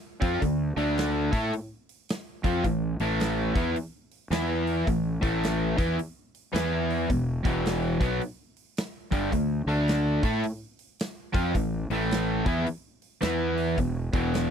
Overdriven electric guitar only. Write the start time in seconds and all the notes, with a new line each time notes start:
0.21 F3 C4 F4
0.42 D3 A3
0.77 D3 A3 D4
1.32 A3 E4 A4
2.44 F3 C4 F4
2.65 A2 E3
3.01 A2 E3 A3
3.56 E3 B3 E4
4.31 E3 B3 E4
4.87 A2 E3
5.22 A2 E3 A3
5.77 E3 B3 E4
6.53 E3 B3 E4
7.10 E2 B2
7.44 E2 B2 E3
8.00 B2 F#3 B3
9.11 G2 D3 G3
9.32 D3 A3
9.68 D3 A3 D4
10.23 A3 E4 A4
11.33 F3 C4 F4
11.55 A2 E3
11.91 A2 E3 A3
12.46 E3 B3 E4
13.21 E3 B3 E4
13.79 E2 B2
14.13 E2 B2 E3